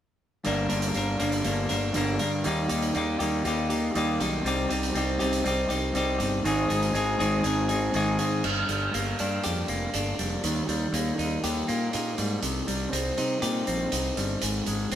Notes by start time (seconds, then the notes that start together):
0.44 G1 G2 D3 G3 A#3 D4 A#4, closed hi-hat
0.69 G1 G3 A#3 D4 A#4, closed hi-hat
0.82 closed hi-hat
0.94 G1 G3 A#3 D4 A#4, closed hi-hat
1.19 G1 G2 D3 G3 A#3 D4 A#4, closed hi-hat
1.32 closed hi-hat
1.44 G1 G3 A#3 D4 A#4, closed hi-hat
1.69 G1 G3 A#3 D4 A#4, closed hi-hat
1.94 G1 G2 D3 G3 A#3 D4 A#4, closed hi-hat
2.19 G2 G3 A#3 D4 A#4, closed hi-hat
2.44 D#2 D#3 G3 A#3 D#4 G4, closed hi-hat
2.69 D#2 A#3 D#4 G4, closed hi-hat
2.82 closed hi-hat
2.94 D#2 G3 A#3 D#4 G4, closed hi-hat
3.19 D#2 D#3 G3 A#3 D#4 G4, closed hi-hat
3.44 D#2 G3 A#3 D#4 G4, closed hi-hat
3.70 A#3 D#4 G4, closed hi-hat
3.94 D#2 D#3 G3 A#3 D#4 G4, closed hi-hat
4.20 B1 A#3 D#4 G4, closed hi-hat
4.44 C2 C3 G3 C4 D#4 G4, closed hi-hat
4.69 C2 C4 D#4 G4, closed hi-hat
4.83 closed hi-hat
4.94 C2 G3 C4 D#4 G4, closed hi-hat
5.19 C2 C3 G3 C4 D#4 G4, closed hi-hat
5.33 closed hi-hat
5.44 C2 G3 C4 D#4 G4, closed hi-hat
5.69 C2 C4 D#4 G4, closed hi-hat
5.94 C2 C3 G3 C4 D#4 G4, closed hi-hat
6.18 G1 C4 D#4 G4, closed hi-hat
6.44 G#1 G#2 D#3 G#3 C4 D#4 G#4, closed hi-hat
6.69 G#1 G#3 C4 D#4 G#4, closed hi-hat
6.82 closed hi-hat
6.93 G#1 G#3 C4 D#4 G#4, closed hi-hat
7.19 G#1 G#2 D#3 G#3 C4 D#4 G#4, closed hi-hat
7.43 G#1 G#3 C4 D#4 G#4, closed hi-hat
7.68 G#3 C4 D#4 G#4, closed hi-hat
7.94 G#1 G#2 D#3 G#3 C4 D#4 G#4, closed hi-hat
8.19 G#2 G#3 C4 D#4 G#4, closed hi-hat
8.44 G1 G2, crash
8.69 G1 G3, closed hi-hat
8.94 G1 A#3, closed hi-hat
9.19 G2 D4, closed hi-hat
9.44 F2 G4, closed hi-hat
9.68 F1 A#3, closed hi-hat
9.94 G1 D4, closed hi-hat
10.19 F1 G3, closed hi-hat
10.44 D#2 D#3, closed hi-hat
10.68 D#2 G3, closed hi-hat
10.93 D#2 A#3, closed hi-hat
11.19 D#2 D#4, closed hi-hat
11.44 D#2 G4, closed hi-hat
11.68 A#2 A#3, closed hi-hat
11.93 A#2 D#4, closed hi-hat
12.18 G#2 G3, closed hi-hat
12.43 C2 C3, closed hi-hat
12.67 C2 G3, closed hi-hat
12.92 C2 C4, closed hi-hat
13.18 C3 D#4, closed hi-hat
13.42 A#2 G4, closed hi-hat
13.67 A#1 C4, closed hi-hat
13.92 C2 D#4, closed hi-hat
14.17 G1 G3, closed hi-hat
14.42 G#1 G#2, closed hi-hat
14.66 G#1 G#3, closed hi-hat
14.92 G#1, closed hi-hat